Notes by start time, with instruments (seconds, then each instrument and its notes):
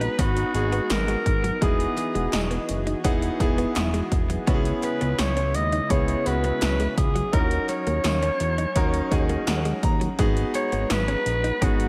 Already playing: analog synth pad G#3 B3 D#4 F#4 A#5, grand piano B3 D#4 F#4 G#4, alto saxophone B4
0.01 clean electric guitar D#4, closed hi-hat
0.18 analog synth bass G#1, grand piano B3 D#4 F#4 B4, clean electric guitar C#4, alto saxophone F#4, kick, closed hi-hat
0.36 muted clean electric guitar stroke, closed hi-hat
0.54 analog synth bass G#1, grand piano B3 D#4 F#4 G#4, closed hi-hat
0.72 clean electric guitar B3, closed hi-hat
0.90 analog synth bass G#1, alto saxophone A#4, snare, clap, closed hi-hat, tambourine
1.08 clean electric guitar G#3, closed hi-hat
1.26 analog synth bass G#1, muted clean electric guitar stroke, kick, closed hi-hat
1.44 clean electric guitar F#3, closed hi-hat
1.61 analog synth bass E1, clean electric guitar E3, analog synth pad E3 B3 G#4, grand piano B3 D#4 E4 G#4, alto saxophone G#4, kick, closed hi-hat
1.80 closed hi-hat
1.97 muted clean electric guitar stroke, clap, closed hi-hat
2.15 analog synth bass E1, clean electric guitar G#3, closed hi-hat
2.33 analog synth bass E1, synth bell D#5, snare, clap, closed hi-hat, tambourine
2.51 clean electric guitar B3, closed hi-hat
2.69 analog synth bass F#1, muted clean electric guitar stroke, closed hi-hat
2.87 clean electric guitar D#4, closed hi-hat
3.04 analog synth bass E1, grand piano B3 D#4 E4 G#4, clean electric guitar C#4, synth bell F#5, kick, closed hi-hat
3.22 muted clean electric guitar stroke, closed hi-hat
3.40 analog synth bass E1, grand piano B3 E4 G#4, kick, closed hi-hat
3.58 clean electric guitar B3, closed hi-hat
3.76 analog synth bass E1, synth bell E5, snare, clap, closed hi-hat, tambourine
3.94 clean electric guitar G#3, closed hi-hat
4.12 analog synth bass E1, muted clean electric guitar stroke, kick, closed hi-hat
4.30 clean electric guitar F#3, closed hi-hat
4.47 analog synth bass C#2, analog synth pad C#3 G#3 E4, grand piano B3 C#4 E4 F#4, clean electric guitar C#4, kick, closed hi-hat
4.54 grand piano G#4
4.65 closed hi-hat
4.83 alto saxophone B4, muted clean electric guitar stroke, clap, closed hi-hat
5.01 analog synth bass C#2, clean electric guitar B3, closed hi-hat
5.19 analog synth bass C#2, alto saxophone C#5, snare, clap, closed hi-hat, tambourine
5.37 clean electric guitar C#4, closed hi-hat
5.54 analog synth bass D#2, alto saxophone D#5, muted clean electric guitar stroke, closed hi-hat
5.72 clean electric guitar D#4, closed hi-hat
5.90 analog synth bass C#2, grand piano B3 C#4 E4 G#4, clean electric guitar C#4, alto saxophone C#5, kick, closed hi-hat
6.08 muted clean electric guitar stroke, closed hi-hat
6.25 analog synth bass C#2, grand piano B3 C#4 E4 F#4, alto saxophone B4, closed hi-hat
6.44 clean electric guitar B3, closed hi-hat
6.62 analog synth bass C#2, snare, clap, closed hi-hat, tambourine
6.80 clean electric guitar G#3, closed hi-hat
6.97 analog synth bass C#2, alto saxophone G#4, muted clean electric guitar stroke, kick, closed hi-hat
7.15 clean electric guitar F#3, closed hi-hat
7.33 analog synth bass D#2, analog synth pad F#3 C#4, grand piano C#4 D#4 E4 A#4, clean electric guitar D#4, alto saxophone A#4, kick, closed hi-hat
7.40 grand piano F#4
7.51 closed hi-hat
7.69 alto saxophone C#5, muted clean electric guitar stroke, clap, closed hi-hat
7.87 analog synth bass D#2, clean electric guitar A#3, closed hi-hat
8.04 analog synth bass D#2, snare, clap, closed hi-hat, tambourine
8.22 clean electric guitar C#4, closed hi-hat
8.40 analog synth bass E2, muted clean electric guitar stroke, closed hi-hat
8.58 clean electric guitar D#4, closed hi-hat
8.75 analog synth bass D#2, grand piano C#4 D#4 F#4 A#4, clean electric guitar C#4, kick, closed hi-hat
8.94 muted clean electric guitar stroke, closed hi-hat
9.11 analog synth bass D#2, grand piano C#4 D#4 F#4 G#4 D#5, kick, closed hi-hat
9.29 clean electric guitar A#3, closed hi-hat
9.47 analog synth bass D#2, grand piano F#5, snare, clap, closed hi-hat, tambourine
9.65 clean electric guitar G#3, closed hi-hat
9.83 analog synth bass D#2, grand piano A#5, muted clean electric guitar stroke, kick, closed hi-hat
10.01 clean electric guitar F#3, closed hi-hat
10.19 analog synth bass G#1, analog synth pad G#3 B3 F#4 A#5, clean electric guitar G#3, grand piano B3 D#4 F#4 G#4, kick, closed hi-hat
10.37 closed hi-hat
10.54 alto saxophone C#5, muted clean electric guitar stroke, clap, closed hi-hat
10.72 analog synth bass G#1, clean electric guitar B3, closed hi-hat
10.90 analog synth bass G#1, alto saxophone B4, snare, clap, closed hi-hat, tambourine
11.08 clean electric guitar C#4, closed hi-hat
11.26 analog synth bass A#1, muted clean electric guitar stroke, closed hi-hat
11.44 clean electric guitar D#4, closed hi-hat
11.61 analog synth bass G#1, grand piano B3 D#4 F#4 G#4, clean electric guitar C#4, alto saxophone F#4, kick, closed hi-hat
11.80 muted clean electric guitar stroke, closed hi-hat